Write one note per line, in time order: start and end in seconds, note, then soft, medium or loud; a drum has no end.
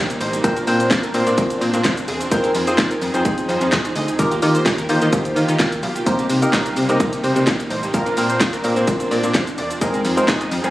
0.00 0.13 C2 medium
0.00 0.42 C3 medium
0.00 0.42 G3 medium
0.00 0.16 A#3 medium
0.00 2.27 A#3 medium
0.00 0.42 D#4 medium
0.00 downlifter medium
0.09 muted clean electric guitar stroke soft
0.09 closed hi-hat medium
0.09 shaker medium
0.20 0.36 A1 loud
0.20 0.31 C5 medium
0.20 muted clean electric guitar stroke soft
0.20 open hi-hat medium
0.20 shaker medium
0.33 0.48 A#3 medium
0.33 0.44 D#4 medium
0.33 0.44 G4 medium
0.33 closed hi-hat medium
0.33 shaker medium
0.44 0.59 A#1 loud
0.44 0.57 C4 medium
0.44 4.15 C4 medium
0.44 0.57 D4 medium
0.44 2.30 D4 medium
0.44 0.57 F4 medium
0.44 0.64 A#4 loud
0.44 0.57 A#4 medium
0.44 0.57 C5 medium
0.44 muted clean electric guitar stroke soft
0.44 kick loud
0.44 closed hi-hat medium
0.44 shaker medium
0.56 0.66 D4 medium
0.56 0.67 F4 medium
0.56 0.67 C5 medium
0.56 closed hi-hat soft
0.56 shaker soft
0.67 0.92 A#2 loud
0.67 0.93 C4 medium
0.67 0.93 D4 medium
0.67 0.83 D4 medium
0.67 0.93 F4 medium
0.67 0.80 F4 medium
0.67 0.93 A#4 medium
0.67 0.93 C5 medium
0.67 0.79 C5 medium
0.67 open hi-hat medium
0.67 shaker medium
0.80 0.89 C5 medium
0.80 muted clean electric guitar stroke medium
0.80 closed hi-hat medium
0.80 shaker medium
0.90 1.06 A#1 loud
0.90 1.10 D4 medium
0.90 1.03 F4 medium
0.90 1.02 C5 medium
0.90 kick loud
0.90 snare loud
0.90 clap loud
0.90 closed hi-hat medium
0.90 shaker medium
1.03 1.13 A#4 medium
1.03 muted clean electric guitar stroke medium
1.03 closed hi-hat medium
1.03 shaker medium
1.14 1.22 A#2 loud
1.14 1.65 C4 medium
1.14 1.65 D4 medium
1.14 1.65 F4 medium
1.14 1.65 A#4 medium
1.14 1.65 C5 medium
1.14 muted clean electric guitar stroke soft
1.14 open hi-hat medium
1.14 shaker medium
1.27 1.34 A#2 medium
1.27 1.36 D4 soft
1.27 1.37 F4 medium
1.27 1.38 C5 medium
1.27 1.36 D5 medium
1.27 closed hi-hat soft
1.27 shaker medium
1.38 1.53 A#1 loud
1.38 1.57 D4 medium
1.38 1.50 F4 loud
1.38 1.49 C5 medium
1.38 kick loud
1.38 closed hi-hat medium
1.38 shaker medium
1.50 muted clean electric guitar stroke soft
1.50 closed hi-hat medium
1.50 shaker medium
1.61 1.69 A#2 loud
1.61 1.82 C5 medium
1.61 muted clean electric guitar stroke soft
1.61 open hi-hat medium
1.61 shaker soft
1.74 1.81 A#2 loud
1.74 1.83 D4 medium
1.74 1.84 F4 medium
1.74 1.84 C5 medium
1.74 closed hi-hat medium
1.74 shaker medium
1.84 2.00 A#1 medium
1.84 2.04 D4 loud
1.84 1.97 F4 loud
1.84 1.96 C5 loud
1.84 kick loud
1.84 snare medium
1.84 clap loud
1.84 closed hi-hat medium
1.84 shaker medium
1.97 muted clean electric guitar stroke soft
1.97 closed hi-hat medium
1.97 shaker medium
2.08 2.23 E1 loud
2.08 2.19 G#4 medium
2.08 muted clean electric guitar stroke soft
2.08 open hi-hat medium
2.08 shaker medium
2.20 2.31 D4 medium
2.20 2.31 F4 medium
2.20 2.31 C5 medium
2.20 closed hi-hat medium
2.20 shaker medium
2.31 2.47 F1 loud
2.31 4.17 F3 medium
2.31 2.51 C4 medium
2.31 2.51 D#4 medium
2.31 4.17 D#4 medium
2.31 2.51 F4 medium
2.31 4.17 G#4 medium
2.31 2.51 G#4 medium
2.31 2.52 A#4 loud
2.31 2.51 C5 medium
2.31 muted clean electric guitar stroke soft
2.31 kick loud
2.31 closed hi-hat medium
2.31 shaker medium
2.44 2.53 D#4 medium
2.44 2.54 G#4 medium
2.44 2.55 C5 medium
2.44 closed hi-hat soft
2.44 shaker soft
2.55 2.80 F2 loud
2.55 2.70 D#4 medium
2.55 2.67 G#4 medium
2.55 2.66 C5 medium
2.55 open hi-hat medium
2.55 shaker medium
2.67 2.93 C4 medium
2.67 2.93 D#4 medium
2.67 2.93 F4 medium
2.67 2.93 G#4 medium
2.67 2.77 C5 medium
2.67 2.93 C5 medium
2.67 muted clean electric guitar stroke medium
2.67 closed hi-hat medium
2.67 shaker medium
2.78 2.94 F1 loud
2.78 2.97 D#4 medium
2.78 2.90 G#4 medium
2.78 2.89 C5 medium
2.78 kick loud
2.78 snare loud
2.78 clap loud
2.78 closed hi-hat medium
2.78 shaker medium
2.91 3.00 A#4 medium
2.91 muted clean electric guitar stroke medium
2.91 closed hi-hat medium
2.91 shaker medium
3.02 3.10 F2 loud
3.02 muted clean electric guitar stroke soft
3.02 open hi-hat medium
3.02 shaker medium
3.14 3.21 F2 loud
3.14 3.65 C4 medium
3.14 3.65 D#4 medium
3.14 3.24 D#4 medium
3.14 3.65 F4 medium
3.14 3.65 G#4 medium
3.14 3.24 G#4 medium
3.14 3.25 C5 medium
3.14 3.24 C5 medium
3.14 3.65 C5 medium
3.14 closed hi-hat soft
3.14 shaker medium
3.25 3.40 F1 loud
3.25 3.44 D#4 medium
3.25 3.37 G#4 medium
3.25 3.36 C5 loud
3.25 kick loud
3.25 closed hi-hat medium
3.25 shaker medium
3.38 muted clean electric guitar stroke soft
3.38 closed hi-hat medium
3.38 shaker medium
3.49 3.57 F2 loud
3.49 3.69 C5 medium
3.49 muted clean electric guitar stroke soft
3.49 open hi-hat medium
3.49 shaker soft
3.61 3.68 F2 loud
3.61 3.71 D#4 medium
3.61 3.71 G#4 medium
3.61 3.72 C5 medium
3.61 closed hi-hat medium
3.61 shaker medium
3.72 3.88 F1 loud
3.72 muted clean electric guitar stroke soft
3.72 kick loud
3.72 snare medium
3.72 clap loud
3.72 closed hi-hat medium
3.72 shaker medium
3.84 3.94 D#4 medium
3.84 3.95 G#4 medium
3.84 3.95 C5 medium
3.84 closed hi-hat medium
3.84 shaker medium
3.95 4.11 D2 medium
3.95 4.14 D#4 medium
3.95 4.08 G#4 medium
3.95 4.07 C5 loud
3.95 4.06 D#5 medium
3.95 open hi-hat medium
3.95 shaker medium
4.08 muted clean electric guitar stroke medium
4.08 closed hi-hat medium
4.08 shaker medium
4.19 4.34 D#2 loud
4.19 6.05 D#3 medium
4.19 4.32 A#3 medium
4.19 6.05 A#3 medium
4.19 4.32 D#4 medium
4.19 6.05 F4 medium
4.19 4.32 F4 medium
4.19 6.05 G4 medium
4.19 4.32 G4 medium
4.19 4.39 A#4 medium
4.19 4.32 A#4 medium
4.19 kick loud
4.19 closed hi-hat medium
4.19 shaker medium
4.31 4.41 A#3 medium
4.31 4.42 F4 medium
4.31 4.42 G4 medium
4.31 closed hi-hat soft
4.31 shaker soft
4.42 4.58 D#3 loud
4.42 4.68 A#3 medium
4.42 4.58 A#3 medium
4.42 4.68 D#4 medium
4.42 4.68 F4 medium
4.42 4.54 F4 medium
4.42 4.68 G4 medium
4.42 4.54 G4 medium
4.42 4.68 A#4 medium
4.42 open hi-hat medium
4.42 shaker medium
4.55 4.64 C5 medium
4.55 muted clean electric guitar stroke medium
4.55 closed hi-hat medium
4.55 shaker medium
4.65 4.81 D#2 loud
4.65 4.85 A#3 medium
4.65 4.78 F4 medium
4.65 4.77 G4 loud
4.65 kick loud
4.65 snare loud
4.65 clap loud
4.65 closed hi-hat medium
4.65 shaker medium
4.78 4.88 A#4 medium
4.78 muted clean electric guitar stroke medium
4.78 closed hi-hat medium
4.78 shaker medium
4.89 4.97 D#3 loud
4.89 5.40 A#3 medium
4.89 5.40 D#4 medium
4.89 5.40 F4 medium
4.89 5.40 G4 medium
4.89 5.40 C5 medium
4.89 muted clean electric guitar stroke soft
4.89 open hi-hat medium
4.89 shaker medium
5.01 5.09 D#3 loud
5.01 5.11 A#3 medium
5.01 5.12 F4 medium
5.01 5.12 G4 medium
5.01 5.11 D#5 medium
5.01 closed hi-hat medium
5.01 shaker medium
5.12 5.28 D#2 loud
5.12 5.31 A#3 medium
5.12 5.24 F4 medium
5.12 5.24 G4 loud
5.12 kick loud
5.12 closed hi-hat medium
5.12 shaker medium
5.25 muted clean electric guitar stroke soft
5.25 closed hi-hat medium
5.25 shaker medium
5.36 5.44 D#3 loud
5.36 5.56 F5 medium
5.36 muted clean electric guitar stroke soft
5.36 open hi-hat medium
5.36 shaker medium
5.48 5.56 D#3 loud
5.48 5.58 A#3 medium
5.48 5.58 F4 medium
5.48 5.59 G4 medium
5.48 closed hi-hat soft
5.48 shaker medium
5.59 5.75 D#2 loud
5.59 5.78 A#3 medium
5.59 5.71 F4 loud
5.59 5.71 G4 loud
5.59 kick loud
5.59 snare medium
5.59 clap loud
5.59 closed hi-hat medium
5.59 shaker medium
5.72 muted clean electric guitar stroke medium
5.72 closed hi-hat medium
5.72 shaker medium
5.83 5.98 B1 loud
5.83 5.94 F5 medium
5.83 muted clean electric guitar stroke soft
5.83 open hi-hat medium
5.83 shaker medium
5.95 6.05 A#3 medium
5.95 6.06 F4 medium
5.95 6.06 G4 medium
5.95 closed hi-hat medium
5.95 shaker medium
6.06 6.22 C2 loud
6.06 7.92 C3 medium
6.06 7.92 G3 medium
6.06 6.26 A#3 medium
6.06 9.78 A#3 medium
6.06 6.26 C4 medium
6.06 6.26 D#4 medium
6.06 7.92 D#4 medium
6.06 6.26 G4 medium
6.06 6.26 A#4 medium
6.06 6.27 C5 loud
6.06 muted clean electric guitar stroke soft
6.06 kick loud
6.06 closed hi-hat medium
6.06 shaker medium
6.18 6.28 A#3 medium
6.18 6.29 D#4 medium
6.18 6.29 G4 medium
6.18 closed hi-hat soft
6.18 shaker soft
6.30 6.45 C3 medium
6.30 6.45 A#3 medium
6.30 6.42 D#4 medium
6.30 6.41 G4 medium
6.30 open hi-hat medium
6.30 shaker medium
6.42 6.67 A#3 medium
6.42 6.68 C4 medium
6.42 6.68 D#4 medium
6.42 6.68 G4 medium
6.42 6.68 A#4 medium
6.42 6.52 D#5 medium
6.42 muted clean electric guitar stroke medium
6.42 closed hi-hat medium
6.42 shaker medium
6.53 6.69 C2 loud
6.53 6.72 A#3 medium
6.53 6.65 D#4 medium
6.53 6.64 G4 loud
6.53 kick loud
6.53 snare loud
6.53 clap loud
6.53 closed hi-hat medium
6.53 shaker medium
6.66 6.75 F5 medium
6.66 muted clean electric guitar stroke medium
6.66 closed hi-hat medium
6.66 shaker medium
6.76 6.85 C3 loud
6.76 muted clean electric guitar stroke medium
6.76 open hi-hat medium
6.76 shaker medium
6.89 6.96 C3 medium
6.89 7.40 A#3 medium
6.89 6.99 A#3 medium
6.89 7.40 C4 medium
6.89 7.40 D#4 medium
6.89 6.99 D#4 medium
6.89 7.00 G4 medium
6.89 7.40 G4 medium
6.89 7.40 A#4 medium
6.89 6.99 D#5 medium
6.89 closed hi-hat medium
6.89 shaker medium
7.00 7.15 C2 loud
7.00 7.19 A#3 loud
7.00 7.12 D#4 loud
7.00 7.11 G4 loud
7.00 kick loud
7.00 closed hi-hat medium
7.00 shaker medium
7.12 muted clean electric guitar stroke medium
7.12 closed hi-hat medium
7.12 shaker medium
7.23 7.32 C3 loud
7.23 7.44 C5 medium
7.23 muted clean electric guitar stroke soft
7.23 open hi-hat medium
7.23 shaker soft
7.36 7.43 C3 loud
7.36 7.46 A#3 medium
7.36 7.46 D#4 medium
7.36 7.47 G4 medium
7.36 closed hi-hat medium
7.36 shaker medium
7.47 7.66 A#3 medium
7.47 7.59 D#4 loud
7.47 7.58 G4 loud
7.47 kick loud
7.47 snare loud
7.47 clap loud
7.47 closed hi-hat medium
7.47 shaker medium
7.59 muted clean electric guitar stroke medium
7.59 closed hi-hat medium
7.59 shaker medium
7.70 7.86 A1 loud
7.70 7.81 C5 medium
7.70 muted clean electric guitar stroke medium
7.70 open hi-hat medium
7.70 shaker medium
7.83 7.98 A#3 medium
7.83 7.93 D#4 medium
7.83 7.94 G4 medium
7.83 closed hi-hat medium
7.83 shaker medium
7.94 8.09 A#1 loud
7.94 8.07 A#3 medium
7.94 8.07 C4 medium
7.94 9.80 C4 medium
7.94 8.07 D4 medium
7.94 9.80 D4 medium
7.94 8.07 F4 medium
7.94 8.14 A#4 loud
7.94 8.07 A#4 medium
7.94 muted clean electric guitar stroke medium
7.94 kick loud
7.94 closed hi-hat medium
7.94 shaker medium
8.06 8.16 D4 medium
8.06 8.16 F4 medium
8.06 8.17 C5 medium
8.06 closed hi-hat soft
8.06 shaker soft
8.17 8.42 A#2 loud
8.17 8.43 A#3 medium
8.17 8.43 C4 medium
8.17 8.33 D4 medium
8.17 8.43 D4 medium
8.17 8.43 F4 medium
8.17 8.29 F4 medium
8.17 8.43 A#4 medium
8.17 8.28 C5 medium
8.17 open hi-hat loud
8.17 shaker medium
8.29 8.39 C5 medium
8.29 muted clean electric guitar stroke soft
8.29 closed hi-hat medium
8.29 shaker medium
8.40 8.56 A#1 loud
8.40 8.60 D4 loud
8.40 8.52 F4 loud
8.40 8.52 C5 loud
8.40 kick loud
8.40 snare loud
8.40 clap loud
8.40 closed hi-hat medium
8.40 shaker medium
8.53 8.63 A#4 medium
8.53 muted clean electric guitar stroke medium
8.53 closed hi-hat medium
8.53 shaker medium
8.64 8.72 A#2 loud
8.64 9.15 A#3 medium
8.64 9.15 C4 medium
8.64 9.15 D4 medium
8.64 9.15 F4 medium
8.64 9.15 A#4 medium
8.64 muted clean electric guitar stroke soft
8.64 open hi-hat medium
8.64 shaker medium
8.76 8.84 A#2 medium
8.76 8.86 D4 medium
8.76 8.87 F4 medium
8.76 8.87 C5 medium
8.76 8.86 C5 medium
8.76 closed hi-hat medium
8.76 shaker medium
8.87 9.03 A#1 loud
8.87 muted clean electric guitar stroke soft
8.87 kick loud
8.87 closed hi-hat medium
8.87 shaker medium
9.00 9.09 D4 medium
9.00 9.10 F4 medium
9.00 9.11 C5 medium
9.00 closed hi-hat medium
9.00 shaker medium
9.11 9.19 A#2 loud
9.11 9.30 D4 medium
9.11 9.23 F4 medium
9.11 9.22 C5 loud
9.11 9.31 D5 medium
9.11 open hi-hat medium
9.11 shaker medium
9.23 9.31 A#2 loud
9.23 muted clean electric guitar stroke medium
9.23 closed hi-hat medium
9.23 shaker medium
9.34 9.50 A#1 loud
9.34 9.53 D4 medium
9.34 9.47 F4 loud
9.34 9.46 C5 loud
9.34 kick loud
9.34 snare medium
9.34 clap loud
9.34 closed hi-hat medium
9.34 shaker medium
9.47 muted clean electric guitar stroke medium
9.47 closed hi-hat medium
9.47 shaker medium
9.58 9.73 E1 loud
9.58 9.69 D5 medium
9.58 muted clean electric guitar stroke soft
9.58 open hi-hat medium
9.58 shaker medium
9.70 9.81 D4 medium
9.70 9.81 F4 medium
9.70 9.81 C5 medium
9.70 closed hi-hat medium
9.70 shaker medium
9.81 9.97 F1 loud
9.81 10.70 F3 medium
9.81 10.01 G#3 medium
9.81 10.01 C4 medium
9.81 10.70 C4 medium
9.81 10.70 D#4 medium
9.81 10.01 D#4 medium
9.81 10.01 F4 medium
9.81 10.70 G#4 medium
9.81 10.01 G#4 medium
9.81 10.02 A#4 loud
9.81 muted clean electric guitar stroke medium
9.81 kick loud
9.81 closed hi-hat medium
9.81 shaker medium
9.94 10.03 D#4 medium
9.94 10.04 G#4 medium
9.94 10.05 C5 medium
9.94 closed hi-hat soft
9.94 shaker soft
10.05 10.20 F2 loud
10.05 10.20 D#4 medium
10.05 10.17 G#4 medium
10.05 10.16 C5 medium
10.05 open hi-hat medium
10.05 shaker medium
10.17 10.42 G#3 medium
10.17 10.42 C4 medium
10.17 10.42 D#4 medium
10.17 10.43 F4 medium
10.17 10.43 A#4 medium
10.17 10.27 C5 medium
10.17 muted clean electric guitar stroke soft
10.17 closed hi-hat soft
10.17 shaker medium
10.28 10.44 F1 loud
10.28 10.47 D#4 medium
10.28 10.40 G#4 medium
10.28 10.39 C5 medium
10.28 kick loud
10.28 snare loud
10.28 clap loud
10.28 closed hi-hat medium
10.28 shaker medium
10.40 10.50 D#5 medium
10.40 muted clean electric guitar stroke soft
10.40 closed hi-hat medium
10.40 shaker medium
10.51 10.60 F2 loud
10.51 muted clean electric guitar stroke soft
10.51 open hi-hat medium
10.51 shaker medium
10.64 10.70 F2 loud
10.64 10.70 G#3 medium
10.64 10.70 C4 medium
10.64 10.70 D#4 medium
10.64 10.70 F4 medium
10.64 10.70 G#4 medium
10.64 10.70 C5 medium
10.64 closed hi-hat medium
10.64 shaker medium